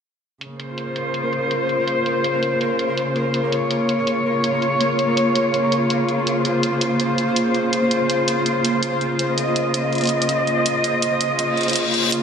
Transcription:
0.41 12.23 C#3 medium
0.41 12.11 A#3 medium
0.41 6.29 A#4 medium
0.41 closed hi-hat medium
0.48 12.23 A#3 medium
0.60 3.56 C5 medium
0.60 closed hi-hat medium
0.71 12.23 F4 medium
0.78 closed hi-hat medium
0.96 closed hi-hat medium
1.14 closed hi-hat medium
1.33 closed hi-hat medium
1.51 closed hi-hat medium
1.69 closed hi-hat soft
1.88 closed hi-hat medium
2.06 closed hi-hat medium
2.24 closed hi-hat medium
2.43 closed hi-hat medium
2.61 closed hi-hat medium
2.79 closed hi-hat medium
2.97 closed hi-hat medium
3.16 closed hi-hat soft
3.34 closed hi-hat medium
3.52 6.49 C#5 medium
3.52 closed hi-hat medium
3.71 closed hi-hat medium
3.89 closed hi-hat medium
4.07 closed hi-hat medium
4.44 closed hi-hat medium
4.62 closed hi-hat soft
4.81 closed hi-hat medium
4.99 closed hi-hat medium
5.17 closed hi-hat medium
5.35 closed hi-hat medium
5.54 closed hi-hat medium
5.72 closed hi-hat medium
5.90 closed hi-hat medium
6.09 closed hi-hat soft
6.26 12.14 C5 medium
6.26 closed hi-hat medium
6.45 9.41 C5 medium
6.45 closed hi-hat medium
6.63 closed hi-hat medium
6.81 closed hi-hat medium
7.00 closed hi-hat medium
7.18 closed hi-hat medium
7.36 closed hi-hat medium
7.54 closed hi-hat soft
7.73 closed hi-hat medium
7.91 closed hi-hat medium
8.10 closed hi-hat medium
8.28 closed hi-hat medium
8.46 closed hi-hat medium
8.65 closed hi-hat medium
8.83 closed hi-hat medium
9.01 closed hi-hat soft
9.19 closed hi-hat medium
9.38 12.23 D#5 medium
9.38 closed hi-hat medium
9.56 closed hi-hat medium
9.74 closed hi-hat medium
9.93 closed hi-hat soft
9.95 closed hi-hat soft
9.98 closed hi-hat soft
10.01 closed hi-hat soft
10.04 closed hi-hat soft
10.05 closed hi-hat soft
10.07 closed hi-hat soft
10.09 closed hi-hat soft
10.22 closed hi-hat medium
10.29 closed hi-hat medium
10.47 closed hi-hat soft
10.66 closed hi-hat medium
10.84 closed hi-hat medium
11.02 closed hi-hat medium
11.21 closed hi-hat medium
11.39 closed hi-hat medium
11.39 reverse cymbal medium
11.57 closed hi-hat soft
11.61 closed hi-hat soft
11.63 closed hi-hat soft
11.68 closed hi-hat soft
11.73 closed hi-hat medium
11.76 closed hi-hat medium
11.94 closed hi-hat soft
12.12 12.23 A#3 medium
12.12 12.23 A#4 medium
12.12 closed hi-hat medium

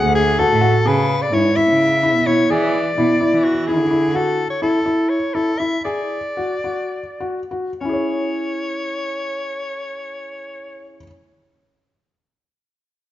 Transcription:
0.00 0.45 D2 medium
0.00 0.19 G#4 medium
0.00 0.11 F#5 medium
0.15 0.41 G#4 medium
0.15 frame drum soft
0.39 0.53 F#4 medium
0.39 0.89 A4 medium
0.39 1.05 A5 medium
0.39 frame drum soft
0.50 0.71 A2 medium
0.61 0.76 F#4 medium
0.86 1.27 C#3 medium
0.86 1.14 G#4 medium
0.86 1.23 B4 medium
1.22 1.35 D5 medium
1.32 1.53 G#2 medium
1.32 1.47 E4 medium
1.32 1.57 C#5 medium
1.56 1.84 E4 medium
1.56 2.28 E5 medium
1.68 2.16 C#3 medium
2.03 2.17 E4 medium
2.15 2.46 B2 medium
2.26 2.40 E4 medium
2.26 2.52 C#5 medium
2.50 2.92 E3 medium
2.50 2.78 G#4 medium
2.50 3.46 D5 medium
2.97 3.18 B2 medium
2.97 3.12 E4 medium
3.21 3.49 E4 medium
3.32 3.80 E3 medium
3.44 3.68 F#4 medium
3.67 3.82 E4 medium
3.67 4.18 G#4 medium
3.79 4.10 D3 medium
3.91 4.05 E4 medium
4.14 4.43 F#4 medium
4.14 4.49 A4 medium
4.50 4.61 C#5 medium
4.62 4.76 E4 medium
4.62 5.11 A4 medium
4.86 5.15 E4 medium
5.09 5.36 C#5 medium
5.34 5.50 E4 medium
5.34 5.60 A4 medium
5.59 5.75 E4 medium
5.59 5.84 E5 medium
5.84 6.16 G#4 medium
5.84 7.46 D5 medium
6.37 6.53 F#4 medium
6.64 6.98 F#4 soft
7.20 7.38 F#4 medium
7.51 7.69 F#4 soft
7.80 10.95 C#4 soft
7.80 10.94 C#5 medium
7.85 10.99 E4 soft
7.89 11.03 G#4 soft
7.89 11.07 C#5 soft

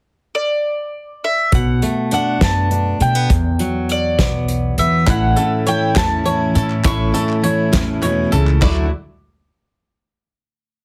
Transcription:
0.35 1.26 D5 medium
1.24 1.51 E5 medium
1.52 1.78 B1 medium
1.52 3.26 B2 medium
1.52 2.13 F#5 medium
1.52 kick medium
1.52 closed hi-hat medium
1.82 2.99 A3 medium
1.82 closed hi-hat soft
2.11 2.70 D4 medium
2.11 2.41 F#5 medium
2.11 closed hi-hat medium
2.41 2.92 F#2 medium
2.41 3.00 B3 soft
2.41 3.01 A5 medium
2.41 kick medium
2.41 snare medium
2.41 closed hi-hat medium
2.71 3.30 D4 medium
2.71 closed hi-hat medium
3.00 3.26 B2 medium
3.00 3.15 A3 medium
3.00 3.93 G5 medium
3.00 closed hi-hat medium
3.15 3.30 B3 soft
3.30 5.04 E2 medium
3.30 3.56 E2 medium
3.30 kick medium
3.30 closed hi-hat medium
3.59 5.08 F#3 medium
3.59 closed hi-hat medium
3.89 4.75 D5 medium
3.89 closed hi-hat medium
4.19 4.70 B1 medium
4.19 4.77 B3 medium
4.19 kick medium
4.19 snare medium
4.19 closed hi-hat medium
4.48 closed hi-hat soft
4.78 5.03 E3 medium
4.78 5.04 B3 medium
4.78 5.09 E5 medium
4.78 closed hi-hat medium
5.06 5.33 A1 medium
5.06 5.37 A2 medium
5.06 5.37 E3 medium
5.06 5.37 A3 medium
5.06 5.37 C#4 medium
5.06 6.25 E4 medium
5.06 5.35 E4 medium
5.06 5.68 F#5 medium
5.06 kick medium
5.06 clap medium
5.06 closed hi-hat medium
5.36 5.66 A3 soft
5.36 5.67 C#4 soft
5.36 5.66 E4 soft
5.36 6.54 A4 medium
5.36 closed hi-hat medium
5.66 5.95 E3 medium
5.66 5.95 A3 medium
5.66 5.94 C#4 medium
5.66 5.94 E4 medium
5.66 6.24 C#5 medium
5.66 5.97 G5 medium
5.66 closed hi-hat medium
5.95 6.47 E2 medium
5.95 6.26 A2 medium
5.95 6.23 E3 medium
5.95 6.24 A3 medium
5.95 6.25 C#4 medium
5.95 6.25 E4 medium
5.95 6.85 A5 medium
5.95 kick medium
5.95 snare loud
5.95 clap medium
5.95 closed hi-hat medium
6.24 6.54 E3 medium
6.24 6.55 A3 medium
6.24 6.54 C#4 medium
6.24 6.53 E4 medium
6.24 7.42 C#5 medium
6.24 closed hi-hat medium
6.54 6.81 A2 medium
6.54 6.83 A3 soft
6.54 6.84 C#4 soft
6.54 6.84 E4 soft
6.54 7.13 A4 medium
6.54 closed hi-hat medium
6.70 clap soft
6.83 7.10 A1 medium
6.83 7.14 A2 medium
6.83 7.14 E3 medium
6.83 7.14 A3 medium
6.83 7.13 C#4 medium
6.83 8.03 E4 medium
6.83 7.11 E4 medium
6.83 7.99 C#6 loud
6.83 kick loud
6.83 clap medium
6.83 closed hi-hat medium
7.12 7.42 A3 soft
7.12 7.43 C#4 soft
7.12 7.43 E4 soft
7.12 8.31 A4 medium
7.12 closed hi-hat medium
7.29 clap soft
7.42 7.72 E3 medium
7.42 7.72 A3 medium
7.42 7.71 C#4 medium
7.42 7.71 E4 medium
7.42 8.01 C#5 medium
7.42 closed hi-hat medium
7.72 8.24 E2 medium
7.72 8.03 A2 medium
7.72 8.00 E3 medium
7.72 8.01 A3 medium
7.72 8.02 C#4 medium
7.72 8.02 E4 medium
7.72 kick medium
7.72 snare medium
7.72 clap medium
7.72 closed hi-hat medium
8.01 8.33 B2 medium
8.01 8.31 E3 medium
8.01 8.32 A3 medium
8.01 8.31 C#4 medium
8.01 8.30 E4 medium
8.01 8.62 C#5 medium
8.01 clap soft
8.01 closed hi-hat medium
8.31 8.58 C#2 medium
8.31 8.62 C#3 medium
8.31 8.60 A3 soft
8.31 8.62 C#4 soft
8.31 8.61 E4 medium
8.31 8.62 A4 medium
8.31 closed hi-hat medium
8.47 clap soft
8.60 8.89 D2 medium
8.60 8.85 D3 medium
8.60 8.85 F#3 medium
8.60 8.85 A3 medium
8.60 8.86 D4 medium
8.60 8.89 E4 medium
8.60 8.86 E4 medium
8.60 8.89 F#4 medium
8.60 8.89 D5 medium
8.60 8.89 D6 medium
8.60 kick medium
8.60 clap medium
8.60 crash medium

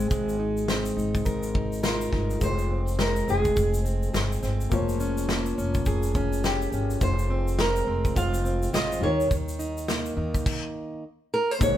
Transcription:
0.00 0.11 G#3 medium
0.00 0.39 C4 medium
0.00 1.25 G#4 medium
0.00 shaker soft
0.11 0.93 G#1 medium
0.11 3.00 G#3 medium
0.11 kick medium
0.11 shaker medium
0.29 shaker soft
0.39 0.96 D#4 medium
0.57 shaker soft
0.68 2.71 C4 soft
0.68 snare medium
0.68 shaker soft
0.86 shaker soft
0.97 1.24 G#1 medium
0.97 1.53 D#4 soft
0.97 shaker soft
1.15 kick medium
1.15 shaker soft
1.25 2.08 G#1 medium
1.25 1.82 A#4 medium
1.25 kick medium
1.25 shaker medium
1.43 shaker medium
1.54 2.12 D#4 medium
1.54 kick medium
1.73 shaker soft
1.83 2.44 F4 medium
1.83 2.48 A#4 medium
1.83 snare loud
1.83 shaker medium
2.01 shaker medium
2.12 2.39 G1 medium
2.12 2.49 D#4 medium
2.12 kick medium
2.12 snare soft
2.30 shaker soft
2.39 3.24 F1 medium
2.39 4.72 F2 medium
2.39 4.66 G#3 medium
2.39 4.67 F4 medium
2.39 4.68 C5 medium
2.39 kick medium
2.39 shaker medium
2.44 3.01 C5 medium
2.58 shaker soft
2.71 3.26 C4 medium
2.88 shaker soft
2.99 5.29 G#3 soft
2.99 3.30 A#4 medium
2.99 snare medium
2.99 shaker soft
3.16 shaker soft
3.28 3.54 F1 medium
3.28 3.84 C4 medium
3.28 3.82 G#4 medium
3.28 shaker soft
3.45 kick medium
3.45 shaker medium
3.56 4.10 F1 medium
3.56 4.13 G#4 medium
3.56 kick medium
3.56 shaker medium
3.74 shaker medium
3.85 4.41 C4 medium
3.85 shaker soft
4.03 shaker soft
4.13 4.40 G1 medium
4.13 5.33 G#4 medium
4.13 snare medium
4.13 shaker medium
4.32 shaker soft
4.43 4.69 G1 medium
4.43 4.78 C4 medium
4.43 snare soft
4.43 shaker soft
4.61 shaker soft
4.70 5.54 F1 medium
4.70 8.22 F3 medium
4.70 6.97 A#3 medium
4.70 6.98 F4 medium
4.70 6.99 C#5 medium
4.70 kick medium
4.70 shaker medium
4.89 shaker soft
5.00 5.57 C#4 medium
5.00 shaker soft
5.17 shaker medium
5.29 7.09 A#3 soft
5.29 snare medium
5.29 shaker soft
5.46 shaker soft
5.58 5.84 F1 medium
5.58 6.14 C#4 medium
5.58 shaker soft
5.74 kick medium
5.74 shaker medium
5.86 6.69 F1 medium
5.86 8.16 G#4 medium
5.86 kick medium
5.86 shaker medium
6.03 shaker medium
6.15 6.72 C#4 medium
6.15 kick medium
6.15 shaker soft
6.33 shaker soft
6.44 7.04 G4 medium
6.44 snare medium
6.44 shaker medium
6.62 shaker soft
6.72 6.99 G1 medium
6.72 7.09 C#4 medium
6.72 shaker soft
6.90 shaker soft
6.99 7.84 F1 medium
6.99 9.10 F2 medium
6.99 8.97 G#3 medium
6.99 8.98 F4 medium
6.99 7.60 C5 medium
6.99 8.99 C5 medium
6.99 kick medium
6.99 shaker medium
7.19 shaker medium
7.30 7.86 C4 medium
7.48 shaker medium
7.58 9.09 G#3 medium
7.58 8.17 A#4 loud
7.58 snare loud
7.58 shaker soft
7.76 shaker soft
7.87 8.14 F1 medium
7.87 8.44 C4 medium
8.05 kick medium
8.05 shaker medium
8.16 8.70 F1 medium
8.16 8.72 F4 medium
8.16 8.74 F5 loud
8.16 kick medium
8.16 shaker medium
8.34 shaker medium
8.45 9.09 C4 medium
8.45 shaker soft
8.63 shaker soft
8.73 9.00 G#1 medium
8.73 9.09 F4 medium
8.73 9.03 D#5 medium
8.73 snare loud
8.73 shaker medium
8.92 shaker soft
8.99 9.28 D#2 loud
8.99 9.30 D#3 medium
8.99 10.42 G3 medium
8.99 10.43 D#4 medium
9.03 10.44 A#4 medium
9.03 9.30 C#5 medium
9.21 shaker soft
9.31 10.13 D#2 medium
9.31 11.03 D#3 medium
9.31 kick medium
9.31 shaker medium
9.48 shaker soft
9.59 10.17 D#4 medium
9.59 shaker soft
9.77 shaker medium
9.88 11.03 A#3 medium
9.88 snare medium
9.88 shaker medium
10.06 shaker soft
10.17 10.44 D#2 medium
10.17 11.03 D#4 soft
10.35 kick medium
10.35 shaker medium
10.46 kick loud
10.46 crash medium
11.34 11.51 A#4 medium
11.51 11.62 C5 medium
11.59 11.77 G#1 loud
11.59 11.77 G#2 medium
11.59 11.77 A#3 medium
11.59 11.77 D#4 medium
11.59 11.77 G4 medium
11.59 11.77 C#5 loud
11.59 kick loud
11.59 shaker medium
11.63 11.77 C#5 medium

